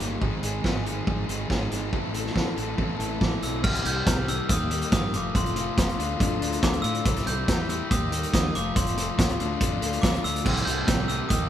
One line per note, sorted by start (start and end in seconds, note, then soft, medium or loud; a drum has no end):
0.00 0.18 G1 medium
0.00 0.20 G3 medium
0.00 0.20 A#3 medium
0.00 0.21 A#3 soft
0.00 0.20 D#4 medium
0.00 0.21 D#4 soft
0.00 0.21 G4 medium
0.00 0.20 G4 medium
0.00 snare soft
0.00 closed hi-hat medium
0.21 0.40 G#1 medium
0.21 0.64 G#2 medium
0.21 0.64 D#3 medium
0.21 0.44 G#3 medium
0.21 0.44 C4 medium
0.21 0.43 D#4 medium
0.21 0.42 G#4 medium
0.21 kick medium
0.43 0.61 G#1 medium
0.43 0.63 G#3 medium
0.43 0.65 C4 soft
0.43 0.64 D#4 medium
0.43 0.65 G#4 medium
0.43 closed hi-hat medium
0.64 1.00 G#1 medium
0.64 0.85 G#3 medium
0.64 0.86 C4 medium
0.64 0.85 D#4 medium
0.64 0.84 G#4 medium
0.64 kick medium
0.64 snare loud
0.86 1.29 G#2 medium
0.86 1.29 D#3 medium
0.86 1.06 G#3 medium
0.86 1.07 C4 medium
0.86 1.07 D#4 medium
0.86 1.08 G#4 medium
0.86 closed hi-hat medium
1.07 1.25 G#1 medium
1.07 1.29 G#3 medium
1.07 1.29 C4 medium
1.07 1.28 D#4 medium
1.07 1.27 G#4 medium
1.07 kick loud
1.28 1.47 G#1 medium
1.28 1.72 G#2 medium
1.28 1.72 D#3 medium
1.28 1.48 G#3 medium
1.28 1.49 C4 medium
1.28 1.49 D#4 medium
1.28 1.50 G#4 medium
1.28 closed hi-hat medium
1.49 1.68 G#1 medium
1.49 1.71 G#3 medium
1.49 1.71 C4 medium
1.49 1.70 D#4 medium
1.49 1.69 G#4 medium
1.49 kick loud
1.49 snare medium
1.70 1.90 G#1 medium
1.70 1.92 G#3 soft
1.70 1.93 C4 medium
1.70 1.92 D#4 medium
1.70 1.91 G#4 medium
1.70 snare soft
1.70 closed hi-hat medium
1.92 2.29 A1 medium
1.92 2.35 A2 medium
1.92 2.33 E3 medium
1.92 2.14 C4 medium
1.92 2.13 E4 medium
1.92 2.13 A4 medium
1.92 kick medium
2.14 2.34 C4 medium
2.14 2.35 E4 medium
2.14 2.35 A4 medium
2.14 closed hi-hat medium
2.26 snare soft
2.34 2.54 A1 medium
2.34 2.57 E3 medium
2.34 2.57 C4 medium
2.34 2.56 E4 medium
2.34 2.55 A4 medium
2.34 kick medium
2.34 snare loud
2.57 2.75 A1 medium
2.57 3.00 A2 medium
2.57 2.77 E3 medium
2.57 2.77 C4 medium
2.57 2.78 E4 medium
2.57 2.78 A4 medium
2.57 closed hi-hat medium
2.76 2.96 A1 medium
2.76 3.20 A2 medium
2.76 3.00 E3 medium
2.76 2.99 C4 medium
2.76 2.98 E4 medium
2.76 2.98 A4 medium
2.76 kick medium
2.99 3.18 A1 medium
2.99 3.43 A2 medium
2.99 3.19 E3 medium
2.99 3.20 C4 medium
2.99 3.21 E4 medium
2.99 3.21 A4 medium
2.99 closed hi-hat medium
3.20 3.39 A1 medium
3.20 3.62 E3 medium
3.20 3.42 C4 medium
3.20 3.41 E4 medium
3.20 3.40 A4 medium
3.20 3.44 D6 medium
3.20 kick loud
3.20 snare medium
3.41 3.64 B1 medium
3.41 3.62 C4 soft
3.41 3.63 E4 soft
3.41 3.62 A4 medium
3.41 3.65 E6 medium
3.41 closed hi-hat medium
3.63 3.80 C2 medium
3.63 3.83 C3 loud
3.63 3.83 E3 loud
3.63 3.83 G3 loud
3.63 3.84 C4 medium
3.63 5.12 G4 medium
3.63 3.84 G4 loud
3.63 4.49 C5 medium
3.63 4.49 E5 medium
3.63 4.49 A5 medium
3.63 3.86 F6 loud
3.63 kick loud
3.63 crash loud
3.75 closed hi-hat medium
3.84 4.02 C2 loud
3.84 4.04 C3 medium
3.84 4.05 E3 loud
3.84 4.05 G3 medium
3.84 4.06 C4 medium
3.84 4.06 G4 loud
3.84 4.30 G6 loud
3.84 closed hi-hat medium
4.06 4.39 C2 loud
4.06 4.26 C3 medium
4.06 4.27 E3 loud
4.06 4.27 G3 loud
4.06 4.27 C4 medium
4.06 4.28 G4 loud
4.06 kick loud
4.06 snare loud
4.06 closed hi-hat loud
4.28 4.48 C3 medium
4.28 4.48 E3 medium
4.28 4.48 G3 medium
4.28 4.48 C4 medium
4.28 4.49 G4 medium
4.28 4.48 E6 loud
4.28 closed hi-hat medium
4.48 4.82 D#2 loud
4.48 4.70 D#3 medium
4.48 4.70 A#3 loud
4.48 4.70 D#4 loud
4.48 4.71 G4 loud
4.48 5.12 A#4 medium
4.48 5.12 D#5 medium
4.48 5.12 A#5 medium
4.48 kick loud
4.48 closed hi-hat loud
4.52 4.92 D#6 medium
4.71 4.91 D#3 medium
4.71 4.91 A#3 medium
4.71 4.92 D#4 medium
4.71 4.92 G4 medium
4.71 closed hi-hat medium
4.81 closed hi-hat medium
4.92 5.15 G2 loud
4.92 5.12 D#3 medium
4.92 5.12 A#3 medium
4.92 5.12 D#4 medium
4.92 5.13 G4 loud
4.92 5.15 D#6 medium
4.92 kick loud
4.92 snare loud
4.92 closed hi-hat loud
5.11 5.30 F1 medium
5.11 5.33 F2 loud
5.11 5.34 C3 medium
5.11 5.34 F3 medium
5.11 5.34 A3 loud
5.11 5.35 C4 loud
5.11 5.97 F4 medium
5.11 5.35 F4 loud
5.11 5.97 C5 medium
5.11 5.97 E5 medium
5.11 7.86 A5 medium
5.11 closed hi-hat medium
5.16 5.35 D6 medium
5.34 5.68 F1 medium
5.34 5.54 F2 loud
5.34 5.55 C3 loud
5.34 5.55 F3 loud
5.34 5.55 A3 loud
5.34 5.56 C4 loud
5.34 5.56 F4 loud
5.34 5.95 C6 loud
5.34 kick loud
5.34 closed hi-hat loud
5.46 closed hi-hat soft
5.55 5.75 F2 medium
5.55 5.76 C3 medium
5.55 5.76 F3 medium
5.55 5.77 A3 medium
5.55 5.77 C4 medium
5.55 5.77 F4 medium
5.55 closed hi-hat medium
5.77 5.94 F1 medium
5.77 5.97 F2 loud
5.77 5.97 C3 loud
5.77 5.97 F3 medium
5.77 5.97 A3 loud
5.77 5.98 C4 loud
5.77 5.97 F4 loud
5.77 kick loud
5.77 snare loud
5.77 closed hi-hat loud
5.89 closed hi-hat soft
5.97 6.15 D2 medium
5.97 6.18 D3 medium
5.97 6.18 A3 medium
5.97 6.19 D4 loud
5.97 7.04 F4 medium
5.97 6.19 F4 loud
5.97 7.04 A4 medium
5.97 7.04 D5 medium
5.97 closed hi-hat medium
6.19 6.36 F2 medium
6.19 6.40 D3 medium
6.19 6.40 A3 medium
6.19 6.40 D4 medium
6.19 6.41 F4 loud
6.19 kick loud
6.19 closed hi-hat loud
6.41 6.57 D2 medium
6.41 6.61 D3 medium
6.41 6.61 A3 medium
6.41 6.62 D4 medium
6.41 6.62 F4 medium
6.41 closed hi-hat medium
6.52 closed hi-hat soft
6.62 6.79 D2 loud
6.62 6.82 D3 medium
6.62 6.83 A3 loud
6.62 6.83 D4 loud
6.62 6.83 F4 loud
6.62 6.83 D6 loud
6.62 kick loud
6.62 snare loud
6.62 closed hi-hat loud
6.73 closed hi-hat soft
6.82 7.00 A2 medium
6.82 7.03 D3 medium
6.82 7.04 A3 medium
6.82 7.04 D4 medium
6.82 7.04 F4 medium
6.82 7.27 E6 loud
6.82 closed hi-hat medium
6.95 closed hi-hat soft
7.04 7.22 C2 medium
7.04 7.25 C3 loud
7.04 7.25 E3 medium
7.04 7.26 G3 loud
7.04 7.26 C4 loud
7.04 7.26 E4 loud
7.04 7.88 G4 medium
7.04 7.89 C5 medium
7.04 7.89 E5 medium
7.04 kick loud
7.04 closed hi-hat loud
7.16 snare soft
7.16 closed hi-hat medium
7.26 7.43 C2 medium
7.26 7.46 C3 medium
7.26 7.47 E3 medium
7.26 7.47 G3 medium
7.26 7.48 C4 loud
7.26 7.48 E4 loud
7.26 7.70 G6 loud
7.26 closed hi-hat medium
7.47 7.80 E2 medium
7.47 7.68 C3 medium
7.47 7.68 E3 loud
7.47 7.69 G3 medium
7.47 7.69 C4 loud
7.47 7.69 E4 loud
7.47 kick loud
7.47 snare loud
7.47 closed hi-hat loud
7.69 7.89 C3 medium
7.69 7.89 E3 medium
7.69 7.89 G3 medium
7.69 7.89 C4 loud
7.69 7.90 E4 medium
7.69 7.91 E6 loud
7.69 closed hi-hat medium
7.89 8.23 D#2 medium
7.89 8.10 D#3 loud
7.89 8.10 A#3 medium
7.89 8.11 D#4 loud
7.89 8.53 G4 medium
7.89 8.11 G4 loud
7.89 8.53 A#4 medium
7.89 8.53 D#5 medium
7.89 8.53 A#5 medium
7.89 8.30 D#6 medium
7.89 kick loud
7.89 closed hi-hat loud
8.11 8.32 D#3 medium
8.11 8.32 A#3 medium
8.11 8.33 D#4 medium
8.11 8.33 G4 medium
8.11 closed hi-hat medium
8.23 closed hi-hat medium
8.33 8.50 D#2 loud
8.33 8.53 D#3 loud
8.33 8.53 A#3 loud
8.33 8.53 D#4 loud
8.33 8.53 G4 loud
8.33 8.55 D#6 loud
8.33 kick loud
8.33 snare loud
8.33 closed hi-hat loud
8.54 8.71 F1 medium
8.54 8.74 F2 medium
8.54 8.75 C3 medium
8.54 8.75 F3 medium
8.54 8.75 A3 medium
8.54 8.75 C4 loud
8.54 10.44 F4 medium
8.54 8.76 F4 loud
8.54 9.39 C5 medium
8.54 9.39 E5 medium
8.54 9.37 A5 medium
8.54 8.77 D6 medium
8.54 closed hi-hat medium
8.75 9.08 F1 medium
8.75 8.96 F2 medium
8.75 8.96 C3 loud
8.75 8.96 F3 loud
8.75 8.96 A3 medium
8.75 8.97 C4 loud
8.75 8.97 F4 loud
8.75 9.36 C6 medium
8.75 kick loud
8.75 closed hi-hat loud
8.86 closed hi-hat medium
8.97 9.17 F2 medium
8.97 9.17 C3 medium
8.97 9.17 F3 loud
8.97 9.17 A3 loud
8.97 9.18 C4 medium
8.97 9.18 F4 medium
8.97 closed hi-hat medium
9.18 9.35 C#2 medium
9.18 9.38 F2 medium
9.18 9.38 C3 loud
9.18 9.38 F3 loud
9.18 9.38 A3 loud
9.18 9.38 C4 loud
9.18 9.38 F4 loud
9.18 kick loud
9.18 snare loud
9.18 closed hi-hat loud
9.29 closed hi-hat soft
9.38 9.56 D2 medium
9.38 9.59 D3 medium
9.38 9.59 A3 loud
9.38 9.59 D4 loud
9.38 9.59 F4 loud
9.38 10.44 A4 medium
9.38 10.44 D5 medium
9.38 11.28 A5 loud
9.38 closed hi-hat medium
9.60 9.77 F2 medium
9.60 9.80 D3 loud
9.60 9.80 A3 loud
9.60 9.81 D4 loud
9.60 9.81 F4 loud
9.60 kick loud
9.60 closed hi-hat loud
9.81 9.98 D2 medium
9.81 10.02 D3 medium
9.81 10.02 A3 medium
9.81 10.02 D4 medium
9.81 10.03 F4 loud
9.81 closed hi-hat medium
9.93 closed hi-hat soft
10.02 10.20 D2 medium
10.02 10.22 D3 medium
10.02 10.23 A3 loud
10.02 10.23 D4 medium
10.02 10.23 F4 loud
10.02 10.24 D6 loud
10.02 kick loud
10.02 snare loud
10.02 closed hi-hat loud
10.14 closed hi-hat soft
10.24 10.41 D2 medium
10.24 10.44 D3 medium
10.24 10.44 A3 medium
10.24 10.44 D4 medium
10.24 10.44 F4 medium
10.24 10.68 E6 loud
10.24 closed hi-hat medium
10.36 closed hi-hat medium
10.44 10.62 C2 medium
10.44 10.65 C3 loud
10.44 10.65 E3 loud
10.44 10.65 G3 loud
10.44 10.66 C4 loud
10.44 10.66 G4 loud
10.44 11.49 G4 medium
10.44 11.29 C5 medium
10.44 11.29 E5 medium
10.44 kick loud
10.44 crash loud
10.57 closed hi-hat soft
10.65 10.83 C2 medium
10.65 10.86 C3 medium
10.65 10.86 E3 medium
10.65 10.87 G3 medium
10.65 10.87 C4 medium
10.65 10.87 G4 loud
10.65 11.10 G6 loud
10.65 closed hi-hat medium
10.87 11.20 C2 medium
10.87 11.06 C3 loud
10.87 11.07 E3 medium
10.87 11.07 G3 loud
10.87 11.07 C4 loud
10.87 11.07 G4 loud
10.87 kick loud
10.87 snare loud
10.87 closed hi-hat loud
11.08 11.28 C3 medium
11.08 11.28 E3 medium
11.08 11.29 G3 medium
11.08 11.29 C4 medium
11.08 11.28 G4 medium
11.08 11.18 E6 loud
11.08 closed hi-hat medium
11.28 11.49 D#2 medium
11.28 11.48 D#3 medium
11.28 11.49 A#3 loud
11.28 11.49 D#4 loud
11.28 11.49 G4 loud
11.28 11.49 A#4 medium
11.28 11.49 D#5 medium
11.28 11.49 A#5 medium
11.28 11.49 D#6 loud
11.28 kick loud
11.28 closed hi-hat loud